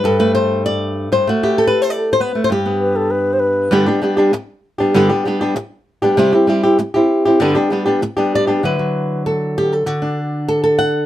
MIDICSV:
0, 0, Header, 1, 4, 480
1, 0, Start_track
1, 0, Key_signature, 1, "major"
1, 0, Tempo, 307535
1, 58, Time_signature, 4, 2, 24, 8
1, 17261, End_track
2, 0, Start_track
2, 0, Title_t, "Flute"
2, 0, Program_c, 0, 73
2, 4384, Note_on_c, 0, 71, 80
2, 4619, Note_on_c, 0, 69, 80
2, 4642, Note_off_c, 0, 71, 0
2, 4850, Note_on_c, 0, 71, 87
2, 4873, Note_off_c, 0, 69, 0
2, 5201, Note_on_c, 0, 72, 87
2, 5224, Note_off_c, 0, 71, 0
2, 5302, Note_on_c, 0, 71, 78
2, 5326, Note_off_c, 0, 72, 0
2, 5796, Note_off_c, 0, 71, 0
2, 17261, End_track
3, 0, Start_track
3, 0, Title_t, "Nylon-string guitar"
3, 0, Program_c, 1, 24
3, 0, Note_on_c, 1, 71, 93
3, 61, Note_on_c, 1, 43, 71
3, 77, Note_on_c, 1, 69, 95
3, 290, Note_off_c, 1, 71, 0
3, 302, Note_on_c, 1, 57, 52
3, 309, Note_on_c, 1, 71, 91
3, 535, Note_off_c, 1, 71, 0
3, 541, Note_on_c, 1, 72, 95
3, 787, Note_off_c, 1, 69, 0
3, 1019, Note_off_c, 1, 72, 0
3, 1026, Note_on_c, 1, 74, 98
3, 1729, Note_off_c, 1, 43, 0
3, 1742, Note_off_c, 1, 74, 0
3, 1745, Note_on_c, 1, 43, 60
3, 1755, Note_on_c, 1, 72, 93
3, 1982, Note_off_c, 1, 43, 0
3, 1982, Note_off_c, 1, 57, 0
3, 1985, Note_off_c, 1, 72, 0
3, 1988, Note_on_c, 1, 57, 71
3, 2016, Note_on_c, 1, 66, 98
3, 2234, Note_on_c, 1, 64, 54
3, 2239, Note_on_c, 1, 67, 81
3, 2463, Note_off_c, 1, 66, 0
3, 2469, Note_on_c, 1, 69, 91
3, 2587, Note_off_c, 1, 67, 0
3, 2613, Note_on_c, 1, 71, 90
3, 2836, Note_off_c, 1, 71, 0
3, 2836, Note_on_c, 1, 72, 93
3, 2967, Note_off_c, 1, 72, 0
3, 2967, Note_on_c, 1, 74, 98
3, 3063, Note_off_c, 1, 69, 0
3, 3311, Note_off_c, 1, 74, 0
3, 3322, Note_on_c, 1, 72, 89
3, 3421, Note_off_c, 1, 57, 0
3, 3437, Note_on_c, 1, 59, 61
3, 3447, Note_off_c, 1, 72, 0
3, 3447, Note_on_c, 1, 71, 94
3, 3664, Note_off_c, 1, 59, 0
3, 3670, Note_on_c, 1, 57, 57
3, 3791, Note_off_c, 1, 71, 0
3, 3812, Note_on_c, 1, 72, 88
3, 3876, Note_off_c, 1, 64, 0
3, 3899, Note_on_c, 1, 43, 70
3, 3902, Note_off_c, 1, 57, 0
3, 3914, Note_off_c, 1, 72, 0
3, 3933, Note_on_c, 1, 67, 83
3, 4145, Note_on_c, 1, 59, 54
3, 5770, Note_off_c, 1, 43, 0
3, 5788, Note_off_c, 1, 59, 0
3, 5788, Note_on_c, 1, 50, 75
3, 5789, Note_on_c, 1, 43, 83
3, 5803, Note_off_c, 1, 67, 0
3, 5806, Note_on_c, 1, 55, 76
3, 5809, Note_on_c, 1, 59, 83
3, 5815, Note_on_c, 1, 62, 80
3, 5821, Note_on_c, 1, 67, 88
3, 6011, Note_off_c, 1, 67, 0
3, 6027, Note_off_c, 1, 62, 0
3, 6029, Note_on_c, 1, 67, 56
3, 6030, Note_off_c, 1, 43, 0
3, 6030, Note_off_c, 1, 50, 0
3, 6039, Note_off_c, 1, 55, 0
3, 6040, Note_off_c, 1, 59, 0
3, 6045, Note_on_c, 1, 62, 55
3, 6059, Note_on_c, 1, 59, 50
3, 6062, Note_on_c, 1, 55, 50
3, 6250, Note_off_c, 1, 55, 0
3, 6264, Note_off_c, 1, 59, 0
3, 6268, Note_on_c, 1, 55, 51
3, 6270, Note_off_c, 1, 67, 0
3, 6273, Note_off_c, 1, 62, 0
3, 6283, Note_on_c, 1, 59, 51
3, 6292, Note_on_c, 1, 62, 54
3, 6303, Note_on_c, 1, 67, 57
3, 6487, Note_off_c, 1, 67, 0
3, 6505, Note_off_c, 1, 62, 0
3, 6505, Note_on_c, 1, 67, 51
3, 6509, Note_off_c, 1, 55, 0
3, 6516, Note_off_c, 1, 59, 0
3, 6524, Note_on_c, 1, 62, 57
3, 6538, Note_on_c, 1, 59, 47
3, 6544, Note_on_c, 1, 55, 50
3, 6746, Note_off_c, 1, 55, 0
3, 6747, Note_off_c, 1, 67, 0
3, 6751, Note_off_c, 1, 59, 0
3, 6753, Note_off_c, 1, 62, 0
3, 7466, Note_on_c, 1, 67, 53
3, 7490, Note_on_c, 1, 62, 51
3, 7495, Note_on_c, 1, 59, 44
3, 7510, Note_on_c, 1, 55, 45
3, 7706, Note_off_c, 1, 67, 0
3, 7713, Note_off_c, 1, 55, 0
3, 7716, Note_on_c, 1, 43, 88
3, 7718, Note_off_c, 1, 62, 0
3, 7720, Note_off_c, 1, 59, 0
3, 7725, Note_on_c, 1, 50, 87
3, 7732, Note_on_c, 1, 55, 83
3, 7740, Note_on_c, 1, 59, 88
3, 7748, Note_on_c, 1, 67, 90
3, 7750, Note_on_c, 1, 62, 87
3, 7932, Note_off_c, 1, 67, 0
3, 7940, Note_off_c, 1, 62, 0
3, 7951, Note_off_c, 1, 43, 0
3, 7951, Note_on_c, 1, 67, 58
3, 7955, Note_off_c, 1, 50, 0
3, 7959, Note_off_c, 1, 55, 0
3, 7959, Note_on_c, 1, 62, 49
3, 7963, Note_off_c, 1, 59, 0
3, 7983, Note_on_c, 1, 59, 54
3, 7984, Note_on_c, 1, 55, 44
3, 8181, Note_off_c, 1, 55, 0
3, 8188, Note_off_c, 1, 67, 0
3, 8192, Note_off_c, 1, 62, 0
3, 8195, Note_off_c, 1, 59, 0
3, 8200, Note_on_c, 1, 55, 53
3, 8213, Note_on_c, 1, 59, 50
3, 8230, Note_on_c, 1, 62, 60
3, 8237, Note_on_c, 1, 67, 65
3, 8423, Note_off_c, 1, 67, 0
3, 8432, Note_off_c, 1, 55, 0
3, 8437, Note_off_c, 1, 62, 0
3, 8438, Note_off_c, 1, 59, 0
3, 8442, Note_on_c, 1, 67, 60
3, 8455, Note_on_c, 1, 62, 52
3, 8461, Note_on_c, 1, 59, 52
3, 8475, Note_on_c, 1, 55, 44
3, 8664, Note_off_c, 1, 55, 0
3, 8666, Note_off_c, 1, 62, 0
3, 8668, Note_off_c, 1, 59, 0
3, 8672, Note_off_c, 1, 67, 0
3, 9397, Note_on_c, 1, 67, 60
3, 9411, Note_on_c, 1, 62, 52
3, 9426, Note_on_c, 1, 59, 53
3, 9436, Note_on_c, 1, 55, 46
3, 9615, Note_off_c, 1, 55, 0
3, 9629, Note_off_c, 1, 67, 0
3, 9632, Note_on_c, 1, 48, 77
3, 9634, Note_on_c, 1, 55, 83
3, 9635, Note_off_c, 1, 62, 0
3, 9641, Note_off_c, 1, 59, 0
3, 9647, Note_on_c, 1, 60, 80
3, 9659, Note_on_c, 1, 64, 83
3, 9666, Note_on_c, 1, 67, 86
3, 9854, Note_off_c, 1, 67, 0
3, 9865, Note_off_c, 1, 48, 0
3, 9867, Note_off_c, 1, 55, 0
3, 9873, Note_off_c, 1, 60, 0
3, 9873, Note_on_c, 1, 67, 58
3, 9875, Note_off_c, 1, 64, 0
3, 9893, Note_on_c, 1, 64, 47
3, 9909, Note_on_c, 1, 60, 46
3, 10098, Note_off_c, 1, 60, 0
3, 10101, Note_on_c, 1, 55, 59
3, 10106, Note_off_c, 1, 67, 0
3, 10116, Note_off_c, 1, 64, 0
3, 10116, Note_on_c, 1, 60, 61
3, 10133, Note_on_c, 1, 64, 60
3, 10138, Note_on_c, 1, 67, 66
3, 10336, Note_off_c, 1, 67, 0
3, 10339, Note_off_c, 1, 55, 0
3, 10347, Note_off_c, 1, 60, 0
3, 10352, Note_off_c, 1, 64, 0
3, 10355, Note_on_c, 1, 67, 64
3, 10371, Note_on_c, 1, 64, 53
3, 10381, Note_on_c, 1, 60, 45
3, 10585, Note_off_c, 1, 60, 0
3, 10586, Note_off_c, 1, 67, 0
3, 10587, Note_off_c, 1, 64, 0
3, 10833, Note_on_c, 1, 67, 56
3, 10858, Note_on_c, 1, 64, 51
3, 10871, Note_on_c, 1, 60, 48
3, 11304, Note_off_c, 1, 67, 0
3, 11316, Note_off_c, 1, 64, 0
3, 11322, Note_on_c, 1, 67, 55
3, 11323, Note_off_c, 1, 60, 0
3, 11338, Note_on_c, 1, 64, 51
3, 11353, Note_on_c, 1, 60, 46
3, 11546, Note_on_c, 1, 43, 77
3, 11549, Note_off_c, 1, 67, 0
3, 11550, Note_on_c, 1, 50, 90
3, 11557, Note_off_c, 1, 64, 0
3, 11558, Note_on_c, 1, 55, 77
3, 11562, Note_off_c, 1, 60, 0
3, 11568, Note_on_c, 1, 59, 85
3, 11575, Note_on_c, 1, 62, 86
3, 11580, Note_on_c, 1, 67, 83
3, 11764, Note_off_c, 1, 67, 0
3, 11780, Note_off_c, 1, 43, 0
3, 11781, Note_off_c, 1, 62, 0
3, 11782, Note_off_c, 1, 50, 0
3, 11783, Note_on_c, 1, 67, 60
3, 11786, Note_off_c, 1, 55, 0
3, 11791, Note_off_c, 1, 59, 0
3, 11800, Note_on_c, 1, 62, 55
3, 11808, Note_on_c, 1, 59, 48
3, 11824, Note_on_c, 1, 55, 49
3, 12004, Note_off_c, 1, 55, 0
3, 12019, Note_off_c, 1, 67, 0
3, 12023, Note_on_c, 1, 55, 55
3, 12026, Note_off_c, 1, 59, 0
3, 12027, Note_off_c, 1, 62, 0
3, 12044, Note_on_c, 1, 59, 58
3, 12055, Note_on_c, 1, 62, 56
3, 12065, Note_on_c, 1, 67, 59
3, 12242, Note_off_c, 1, 67, 0
3, 12255, Note_off_c, 1, 62, 0
3, 12259, Note_off_c, 1, 55, 0
3, 12261, Note_on_c, 1, 67, 57
3, 12269, Note_off_c, 1, 59, 0
3, 12274, Note_on_c, 1, 62, 51
3, 12290, Note_on_c, 1, 59, 55
3, 12307, Note_on_c, 1, 55, 47
3, 12498, Note_off_c, 1, 67, 0
3, 12504, Note_off_c, 1, 62, 0
3, 12511, Note_off_c, 1, 55, 0
3, 12512, Note_off_c, 1, 59, 0
3, 12745, Note_on_c, 1, 67, 57
3, 12764, Note_on_c, 1, 62, 52
3, 12770, Note_on_c, 1, 59, 48
3, 12775, Note_on_c, 1, 55, 42
3, 13032, Note_off_c, 1, 67, 0
3, 13038, Note_on_c, 1, 74, 88
3, 13219, Note_off_c, 1, 74, 0
3, 13220, Note_off_c, 1, 62, 0
3, 13225, Note_on_c, 1, 67, 49
3, 13233, Note_off_c, 1, 59, 0
3, 13235, Note_off_c, 1, 55, 0
3, 13239, Note_on_c, 1, 62, 48
3, 13256, Note_on_c, 1, 59, 48
3, 13259, Note_on_c, 1, 55, 41
3, 13460, Note_off_c, 1, 67, 0
3, 13468, Note_off_c, 1, 62, 0
3, 13472, Note_on_c, 1, 50, 61
3, 13476, Note_off_c, 1, 59, 0
3, 13478, Note_off_c, 1, 55, 0
3, 13486, Note_on_c, 1, 54, 44
3, 13496, Note_on_c, 1, 64, 43
3, 13505, Note_on_c, 1, 71, 74
3, 13715, Note_off_c, 1, 54, 0
3, 13721, Note_on_c, 1, 54, 51
3, 14448, Note_off_c, 1, 71, 0
3, 14455, Note_on_c, 1, 69, 76
3, 14949, Note_on_c, 1, 67, 76
3, 15157, Note_off_c, 1, 69, 0
3, 15176, Note_off_c, 1, 67, 0
3, 15176, Note_on_c, 1, 69, 78
3, 15372, Note_off_c, 1, 50, 0
3, 15377, Note_off_c, 1, 54, 0
3, 15394, Note_on_c, 1, 50, 67
3, 15401, Note_off_c, 1, 64, 0
3, 15401, Note_on_c, 1, 66, 80
3, 15637, Note_on_c, 1, 62, 50
3, 15893, Note_off_c, 1, 69, 0
3, 16364, Note_on_c, 1, 69, 82
3, 16582, Note_off_c, 1, 69, 0
3, 16600, Note_on_c, 1, 69, 83
3, 16834, Note_on_c, 1, 78, 96
3, 16851, Note_off_c, 1, 66, 0
3, 17261, Note_off_c, 1, 50, 0
3, 17261, Note_off_c, 1, 62, 0
3, 17261, Note_off_c, 1, 69, 0
3, 17261, Note_off_c, 1, 78, 0
3, 17261, End_track
4, 0, Start_track
4, 0, Title_t, "Muted nylon-string guitar strokes"
4, 6759, Note_on_c, 9, 29, 65
4, 6915, Note_off_c, 9, 29, 0
4, 8675, Note_on_c, 9, 29, 73
4, 8831, Note_off_c, 9, 29, 0
4, 10591, Note_on_c, 9, 29, 69
4, 10747, Note_off_c, 9, 29, 0
4, 12521, Note_on_c, 9, 29, 62
4, 12677, Note_off_c, 9, 29, 0
4, 17261, End_track
0, 0, End_of_file